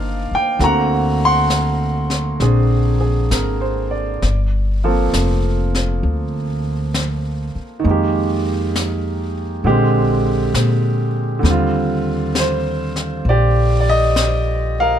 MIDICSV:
0, 0, Header, 1, 5, 480
1, 0, Start_track
1, 0, Tempo, 903614
1, 319, Time_signature, 4, 2, 24, 8
1, 7964, End_track
2, 0, Start_track
2, 0, Title_t, "Grand piano"
2, 0, Program_c, 0, 0
2, 0, Control_c, 0, 64, 127
2, 0, Note_on_c, 0, 51, 52
2, 0, Note_on_c, 0, 58, 38
2, 0, Note_on_c, 0, 60, 56
2, 0, Note_on_c, 0, 62, 49
2, 0, Note_on_c, 0, 63, 55
2, 0, Note_on_c, 0, 70, 51
2, 0, Note_on_c, 0, 74, 74
2, 0, Note_on_c, 0, 77, 86
2, 153, Note_off_c, 0, 77, 0
2, 185, Note_on_c, 0, 79, 84
2, 310, Note_off_c, 0, 70, 0
2, 315, Note_off_c, 0, 51, 0
2, 316, Note_off_c, 0, 58, 0
2, 319, Note_off_c, 0, 60, 0
2, 320, Note_off_c, 0, 63, 0
2, 322, Note_on_c, 0, 50, 51
2, 324, Note_off_c, 0, 62, 0
2, 324, Note_on_c, 0, 58, 45
2, 326, Note_off_c, 0, 74, 0
2, 326, Control_c, 0, 64, 0
2, 328, Note_on_c, 0, 60, 50
2, 329, Note_on_c, 0, 66, 49
2, 333, Note_off_c, 0, 79, 0
2, 339, Note_on_c, 0, 82, 92
2, 347, Note_on_c, 0, 78, 61
2, 407, Control_c, 0, 64, 127
2, 632, Note_off_c, 0, 82, 0
2, 662, Note_off_c, 0, 78, 0
2, 665, Note_on_c, 0, 84, 92
2, 670, Note_on_c, 0, 78, 64
2, 1265, Note_off_c, 0, 60, 0
2, 1273, Note_on_c, 0, 60, 44
2, 1279, Note_on_c, 0, 62, 36
2, 1287, Note_on_c, 0, 68, 47
2, 1589, Note_off_c, 0, 68, 0
2, 1593, Note_off_c, 0, 84, 0
2, 1595, Note_off_c, 0, 78, 0
2, 1597, Note_on_c, 0, 68, 38
2, 1761, Note_on_c, 0, 70, 40
2, 1851, Note_off_c, 0, 68, 0
2, 1918, Note_on_c, 0, 72, 44
2, 2070, Note_off_c, 0, 70, 0
2, 2076, Note_on_c, 0, 74, 44
2, 2173, Note_off_c, 0, 72, 0
2, 2245, Note_off_c, 0, 60, 0
2, 2247, Note_off_c, 0, 50, 0
2, 2248, Note_off_c, 0, 62, 0
2, 2249, Note_off_c, 0, 58, 0
2, 2251, Note_off_c, 0, 66, 0
2, 2254, Control_c, 0, 64, 0
2, 2333, Note_off_c, 0, 74, 0
2, 2361, Control_c, 0, 64, 127
2, 2570, Note_on_c, 0, 53, 47
2, 2572, Note_on_c, 0, 58, 41
2, 2574, Note_on_c, 0, 60, 41
2, 2575, Note_on_c, 0, 69, 52
2, 4141, Note_on_c, 0, 51, 49
2, 4164, Note_on_c, 0, 56, 45
2, 4165, Note_off_c, 0, 53, 0
2, 4166, Note_off_c, 0, 58, 0
2, 4167, Note_off_c, 0, 60, 0
2, 4167, Note_off_c, 0, 69, 0
2, 4174, Control_c, 0, 64, 0
2, 4181, Note_on_c, 0, 58, 41
2, 4200, Note_on_c, 0, 67, 49
2, 4254, Control_c, 0, 64, 127
2, 5107, Note_off_c, 0, 51, 0
2, 5119, Note_off_c, 0, 56, 0
2, 5124, Note_on_c, 0, 50, 55
2, 5127, Note_off_c, 0, 58, 0
2, 5127, Control_c, 0, 64, 0
2, 5128, Note_off_c, 0, 67, 0
2, 5130, Note_on_c, 0, 56, 54
2, 5132, Note_on_c, 0, 60, 53
2, 5136, Note_on_c, 0, 67, 66
2, 5218, Control_c, 0, 64, 127
2, 6043, Note_off_c, 0, 50, 0
2, 6051, Note_on_c, 0, 50, 52
2, 6073, Note_on_c, 0, 55, 46
2, 6079, Note_off_c, 0, 60, 0
2, 6080, Note_off_c, 0, 56, 0
2, 6083, Note_off_c, 0, 67, 0
2, 6083, Control_c, 0, 64, 0
2, 6087, Note_on_c, 0, 60, 51
2, 6108, Note_on_c, 0, 65, 63
2, 6183, Control_c, 0, 64, 127
2, 6583, Note_on_c, 0, 72, 65
2, 7028, Note_off_c, 0, 72, 0
2, 7060, Note_on_c, 0, 74, 72
2, 7066, Note_on_c, 0, 67, 57
2, 7305, Note_off_c, 0, 74, 0
2, 7331, Note_on_c, 0, 74, 64
2, 7372, Note_off_c, 0, 74, 0
2, 7381, Note_on_c, 0, 75, 94
2, 7862, Note_on_c, 0, 77, 89
2, 7869, Note_off_c, 0, 75, 0
2, 7870, Note_on_c, 0, 70, 63
2, 7964, Note_off_c, 0, 50, 0
2, 7964, Note_off_c, 0, 55, 0
2, 7964, Note_off_c, 0, 60, 0
2, 7964, Note_off_c, 0, 65, 0
2, 7964, Note_off_c, 0, 67, 0
2, 7964, Note_off_c, 0, 70, 0
2, 7964, Note_off_c, 0, 77, 0
2, 7964, End_track
3, 0, Start_track
3, 0, Title_t, "Upright bass"
3, 0, Program_c, 1, 32
3, 0, Note_on_c, 1, 31, 72
3, 145, Note_off_c, 1, 31, 0
3, 315, Note_on_c, 1, 38, 77
3, 1252, Note_off_c, 1, 38, 0
3, 1274, Note_on_c, 1, 34, 72
3, 1737, Note_off_c, 1, 34, 0
3, 1756, Note_on_c, 1, 32, 50
3, 2223, Note_off_c, 1, 32, 0
3, 2243, Note_on_c, 1, 31, 65
3, 2707, Note_off_c, 1, 31, 0
3, 2727, Note_on_c, 1, 29, 67
3, 3188, Note_off_c, 1, 29, 0
3, 3204, Note_on_c, 1, 38, 69
3, 3990, Note_off_c, 1, 38, 0
3, 4167, Note_on_c, 1, 41, 76
3, 5099, Note_off_c, 1, 41, 0
3, 5120, Note_on_c, 1, 34, 61
3, 5575, Note_off_c, 1, 34, 0
3, 5597, Note_on_c, 1, 46, 55
3, 6054, Note_off_c, 1, 46, 0
3, 6071, Note_on_c, 1, 39, 76
3, 7012, Note_off_c, 1, 39, 0
3, 7038, Note_on_c, 1, 34, 77
3, 7964, Note_off_c, 1, 34, 0
3, 7964, End_track
4, 0, Start_track
4, 0, Title_t, "Muted upright bass strokes"
4, 167, Note_on_c, 9, 29, 36
4, 220, Note_off_c, 9, 29, 0
4, 4012, Note_on_c, 9, 29, 35
4, 4065, Note_off_c, 9, 29, 0
4, 7964, End_track
5, 0, Start_track
5, 0, Title_t, "Drums"
5, 320, Note_on_c, 9, 25, 35
5, 320, Note_on_c, 9, 38, 29
5, 373, Note_off_c, 9, 38, 0
5, 797, Note_on_c, 9, 38, 43
5, 797, Note_on_c, 9, 44, 58
5, 850, Note_off_c, 9, 38, 0
5, 850, Note_off_c, 9, 44, 0
5, 1115, Note_on_c, 9, 38, 28
5, 1168, Note_off_c, 9, 38, 0
5, 1275, Note_off_c, 9, 25, 0
5, 1275, Note_on_c, 9, 25, 32
5, 1275, Note_on_c, 9, 38, 27
5, 1328, Note_off_c, 9, 38, 0
5, 1759, Note_on_c, 9, 38, 47
5, 1759, Note_on_c, 9, 44, 59
5, 1813, Note_off_c, 9, 38, 0
5, 1813, Note_off_c, 9, 44, 0
5, 2243, Note_off_c, 9, 25, 0
5, 2243, Note_on_c, 9, 25, 31
5, 2243, Note_on_c, 9, 38, 28
5, 2297, Note_off_c, 9, 38, 0
5, 2728, Note_on_c, 9, 38, 49
5, 2728, Note_on_c, 9, 44, 55
5, 2781, Note_off_c, 9, 38, 0
5, 2781, Note_off_c, 9, 44, 0
5, 3053, Note_on_c, 9, 38, 29
5, 3106, Note_off_c, 9, 38, 0
5, 3214, Note_off_c, 9, 25, 0
5, 3214, Note_on_c, 9, 25, 37
5, 3689, Note_on_c, 9, 38, 43
5, 3689, Note_on_c, 9, 44, 51
5, 3742, Note_off_c, 9, 38, 0
5, 3742, Note_off_c, 9, 44, 0
5, 4171, Note_off_c, 9, 25, 0
5, 4171, Note_on_c, 9, 25, 34
5, 4651, Note_on_c, 9, 38, 45
5, 4651, Note_on_c, 9, 44, 60
5, 4704, Note_off_c, 9, 38, 0
5, 4704, Note_off_c, 9, 44, 0
5, 5123, Note_off_c, 9, 25, 0
5, 5123, Note_on_c, 9, 25, 31
5, 5602, Note_on_c, 9, 38, 47
5, 5602, Note_on_c, 9, 44, 58
5, 5655, Note_off_c, 9, 38, 0
5, 5655, Note_off_c, 9, 44, 0
5, 6079, Note_off_c, 9, 25, 0
5, 6079, Note_on_c, 9, 25, 36
5, 6079, Note_on_c, 9, 38, 29
5, 6132, Note_off_c, 9, 38, 0
5, 6561, Note_on_c, 9, 38, 47
5, 6561, Note_on_c, 9, 44, 57
5, 6614, Note_off_c, 9, 38, 0
5, 6614, Note_off_c, 9, 44, 0
5, 6883, Note_on_c, 9, 38, 28
5, 6937, Note_off_c, 9, 38, 0
5, 7042, Note_off_c, 9, 25, 0
5, 7042, Note_on_c, 9, 25, 39
5, 7522, Note_on_c, 9, 38, 47
5, 7522, Note_on_c, 9, 44, 63
5, 7575, Note_off_c, 9, 38, 0
5, 7575, Note_off_c, 9, 44, 0
5, 7964, Note_off_c, 9, 25, 0
5, 7964, End_track
0, 0, End_of_file